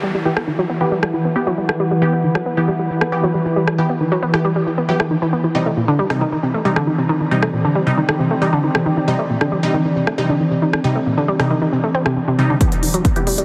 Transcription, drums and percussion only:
0.37 cross-stick medium
1.03 cross-stick medium
1.69 cross-stick medium
2.35 cross-stick medium
3.01 cross-stick medium
3.67 cross-stick medium
4.34 cross-stick medium
5.00 cross-stick medium
6.10 cross-stick medium
6.76 cross-stick medium
7.43 cross-stick loud
8.09 cross-stick loud
8.75 cross-stick loud
9.41 cross-stick medium
10.07 cross-stick medium
10.73 cross-stick medium
11.40 cross-stick medium
12.06 cross-stick medium
12.61 kick loud
12.61 closed hi-hat medium
12.72 closed hi-hat medium
12.83 open hi-hat loud
12.94 closed hi-hat medium
13.05 kick loud
13.05 closed hi-hat medium
13.16 closed hi-hat medium
13.27 open hi-hat loud
13.38 closed hi-hat medium

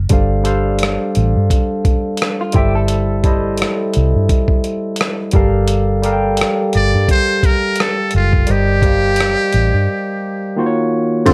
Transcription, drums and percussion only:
0.09 kick medium
0.09 closed hi-hat medium
0.45 closed hi-hat medium
0.79 closed hi-hat medium
0.83 cross-stick medium
1.15 closed hi-hat medium
1.50 kick medium
1.50 closed hi-hat medium
1.85 kick medium
1.85 closed hi-hat soft
2.17 closed hi-hat medium
2.22 cross-stick medium
2.52 kick medium
2.52 closed hi-hat medium
2.88 closed hi-hat medium
3.24 kick medium
3.24 closed hi-hat medium
3.58 closed hi-hat medium
3.62 cross-stick loud
3.94 closed hi-hat medium
4.29 kick medium
4.29 closed hi-hat medium
4.48 kick medium
4.64 closed hi-hat soft
4.96 closed hi-hat medium
5.01 cross-stick loud
5.31 kick medium
5.31 closed hi-hat medium
5.68 closed hi-hat medium
6.04 closed hi-hat medium
6.37 closed hi-hat medium
6.41 cross-stick loud
6.73 closed hi-hat medium
7.09 kick medium
7.09 closed hi-hat medium
7.43 kick medium
7.43 closed hi-hat medium
7.76 closed hi-hat medium
7.80 cross-stick loud
8.11 closed hi-hat medium
8.33 kick medium
8.47 closed hi-hat medium
8.82 kick medium
8.82 closed hi-hat medium
9.16 closed hi-hat medium
9.21 cross-stick loud
9.53 closed hi-hat medium
11.26 kick loud
11.26 closed hi-hat medium
11.26 crash loud

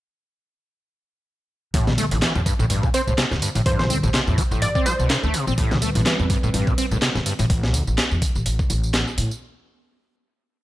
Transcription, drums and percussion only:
1.74 kick loud
1.74 closed hi-hat medium
1.74 tambourine soft
1.87 snare medium
1.87 tambourine soft
1.87 muted conga medium
1.87 low conga medium
1.98 closed hi-hat medium
1.98 tambourine medium
1.98 high conga medium
2.11 closed hi-hat soft
2.11 tambourine soft
2.11 low conga medium
2.22 snare loud
2.22 clap loud
2.22 closed hi-hat medium
2.22 tambourine soft
2.35 tambourine soft
2.35 muted conga medium
2.46 kick medium
2.46 closed hi-hat medium
2.46 tambourine medium
2.60 tambourine soft
2.70 closed hi-hat medium
2.70 tambourine soft
2.70 muted conga medium
2.83 kick loud
2.83 tambourine soft
2.94 closed hi-hat medium
2.94 tambourine medium
3.08 tambourine soft
3.08 high conga medium
3.18 snare loud
3.18 clap loud
3.18 closed hi-hat medium
3.18 tambourine soft
3.18 muted conga medium
3.31 snare soft
3.31 tambourine soft
3.42 closed hi-hat medium
3.42 tambourine medium
3.55 closed hi-hat soft
3.55 tambourine soft
3.55 muted conga medium
3.66 kick loud
3.66 closed hi-hat medium
3.66 tambourine soft
3.79 snare medium
3.79 tambourine soft
3.79 low conga loud
3.90 closed hi-hat medium
3.90 tambourine medium
3.90 high conga medium
4.03 tambourine soft
4.03 muted conga medium
4.03 low conga medium
4.14 snare loud
4.14 clap loud
4.14 closed hi-hat medium
4.14 tambourine soft
4.27 tambourine soft
4.38 kick medium
4.38 closed hi-hat medium
4.38 tambourine medium
4.38 muted conga medium
4.51 tambourine soft
4.62 closed hi-hat medium
4.62 tambourine soft
4.75 kick loud
4.75 tambourine soft
4.86 closed hi-hat medium
4.86 tambourine medium
4.86 muted conga medium
4.86 high conga medium
5.00 tambourine soft
5.10 snare loud
5.10 clap loud
5.10 closed hi-hat medium
5.10 tambourine soft
5.23 tambourine soft
5.23 muted conga medium
5.34 closed hi-hat medium
5.34 tambourine medium
5.47 tambourine soft
5.58 kick loud
5.58 closed hi-hat loud
5.58 tambourine soft
5.71 snare medium
5.71 tambourine soft
5.71 muted conga medium
5.71 low conga loud
5.82 closed hi-hat medium
5.82 tambourine medium
5.82 high conga medium
5.95 closed hi-hat soft
5.95 tambourine soft
5.95 low conga medium
6.06 snare loud
6.06 clap loud
6.06 closed hi-hat medium
6.06 tambourine soft
6.06 muted conga medium
6.19 tambourine soft
6.30 kick loud
6.30 closed hi-hat medium
6.30 tambourine medium
6.43 tambourine soft
6.54 closed hi-hat medium
6.54 tambourine soft
6.54 muted conga medium
6.67 kick medium
6.67 tambourine soft
6.78 closed hi-hat medium
6.78 tambourine medium
6.91 tambourine soft
6.91 muted conga medium
6.91 high conga medium
7.02 snare loud
7.02 clap loud
7.02 closed hi-hat medium
7.02 tambourine soft
7.15 snare soft
7.15 tambourine soft
7.26 closed hi-hat medium
7.26 tambourine medium
7.39 closed hi-hat soft
7.39 tambourine soft
7.39 muted conga medium
7.50 kick loud
7.50 closed hi-hat medium
7.50 tambourine soft
7.63 snare medium
7.63 tambourine soft
7.74 closed hi-hat medium
7.74 tambourine medium
7.87 tambourine soft
7.98 snare loud
7.98 clap loud
7.98 closed hi-hat medium
7.98 tambourine soft
8.11 tambourine soft
8.22 kick medium
8.22 closed hi-hat medium
8.22 tambourine medium
8.35 tambourine soft
8.46 closed hi-hat medium
8.46 tambourine soft
8.59 kick loud
8.59 tambourine soft
8.70 closed hi-hat medium
8.70 tambourine medium
8.83 tambourine soft
8.94 snare loud
8.94 clap loud
8.94 closed hi-hat medium
8.94 tambourine soft
9.07 tambourine soft
9.18 closed hi-hat medium
9.18 tambourine medium
9.31 tambourine soft

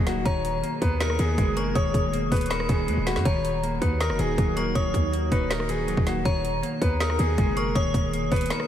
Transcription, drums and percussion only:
0.07 snare medium
0.07 closed hi-hat medium
0.25 kick loud
0.25 closed hi-hat medium
0.45 closed hi-hat medium
0.63 closed hi-hat medium
0.82 kick medium
0.82 closed hi-hat medium
1.00 snare loud
1.00 closed hi-hat medium
1.10 cross-stick medium
1.19 closed hi-hat medium
1.38 kick loud
1.38 closed hi-hat medium
1.57 closed hi-hat medium
1.75 kick loud
1.75 closed hi-hat medium
1.94 kick medium
1.94 closed hi-hat medium
2.13 closed hi-hat medium
2.32 kick medium
2.32 closed hi-hat soft
2.32 open hi-hat medium
2.36 closed hi-hat medium
2.41 closed hi-hat medium
2.46 closed hi-hat medium
2.51 snare loud
2.51 closed hi-hat medium
2.60 cross-stick medium
2.69 kick loud
2.69 closed hi-hat medium
2.88 closed hi-hat medium
3.07 snare medium
3.07 closed hi-hat medium
3.16 snare medium
3.25 kick loud
3.25 closed hi-hat medium
3.45 closed hi-hat medium
3.63 closed hi-hat medium
3.82 kick medium
3.82 closed hi-hat medium
4.00 snare loud
4.00 closed hi-hat medium
4.10 cross-stick medium
4.19 closed hi-hat medium
4.38 kick loud
4.38 closed hi-hat medium
4.57 closed hi-hat medium
4.75 kick loud
4.75 closed hi-hat medium
4.94 kick loud
4.94 closed hi-hat medium
5.14 closed hi-hat medium
5.32 kick medium
5.32 closed hi-hat medium
5.51 snare loud
5.51 closed hi-hat medium
5.60 cross-stick medium
5.69 closed hi-hat medium
5.88 closed hi-hat medium
5.97 kick medium
6.07 snare medium
6.07 closed hi-hat medium
6.25 kick loud
6.25 closed hi-hat medium
6.45 closed hi-hat medium
6.63 closed hi-hat medium
6.82 kick loud
6.82 closed hi-hat medium
7.00 snare loud
7.00 closed hi-hat medium
7.10 cross-stick medium
7.19 closed hi-hat medium
7.38 kick loud
7.38 closed hi-hat medium
7.57 closed hi-hat medium
7.75 kick loud
7.75 closed hi-hat medium
7.94 kick loud
7.94 closed hi-hat medium
8.13 closed hi-hat medium
8.32 kick medium
8.32 closed hi-hat soft
8.32 open hi-hat medium
8.36 closed hi-hat medium
8.41 closed hi-hat medium
8.46 closed hi-hat medium
8.50 snare loud
8.50 closed hi-hat medium
8.60 cross-stick medium

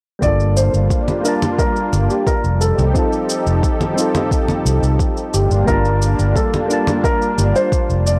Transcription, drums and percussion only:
0.22 kick medium
0.22 shaker soft
0.40 shaker soft
0.57 shaker medium
0.74 shaker soft
0.90 kick medium
0.90 shaker soft
1.08 high conga medium
1.08 shaker soft
1.25 shaker medium
1.42 high conga medium
1.42 shaker soft
1.59 kick medium
1.59 shaker soft
1.76 shaker soft
1.93 high conga soft
1.93 shaker medium
2.10 shaker soft
2.27 kick medium
2.27 shaker soft
2.44 shaker soft
2.61 shaker medium
2.79 high conga soft
2.79 shaker soft
2.95 kick medium
2.95 shaker soft
3.13 shaker soft
3.29 shaker medium
3.47 shaker soft
3.63 kick medium
3.63 shaker soft
3.81 high conga medium
3.81 shaker soft
3.98 shaker medium
4.15 high conga medium
4.15 shaker soft
4.31 kick loud
4.31 shaker soft
4.48 high conga medium
4.48 shaker soft
4.66 shaker medium
4.83 shaker soft
4.99 kick loud
4.99 shaker soft
5.17 shaker soft
5.34 shaker medium
5.51 shaker soft
5.68 kick medium
5.68 shaker soft
5.85 shaker soft
6.02 shaker medium
6.19 shaker soft
6.36 kick medium
6.36 shaker soft
6.54 high conga medium
6.54 shaker soft
6.70 shaker medium
6.87 high conga medium
6.87 shaker soft
7.04 kick loud
7.04 shaker soft
7.22 shaker soft
7.38 high conga medium
7.38 shaker medium
7.56 shaker soft
7.72 kick loud
7.72 shaker soft
7.90 shaker soft
8.07 shaker medium

